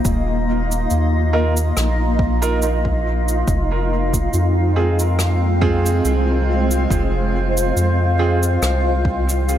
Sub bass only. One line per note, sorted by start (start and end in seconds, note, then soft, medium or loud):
0.05 0.87 D#1 loud
0.91 1.73 D#2 medium
1.77 3.44 A#1 medium
3.48 4.30 F1 loud
4.33 6.01 F2 medium
6.05 6.87 C2 loud
6.90 7.73 F1 loud
7.76 8.58 F2 medium
8.62 9.58 C2 medium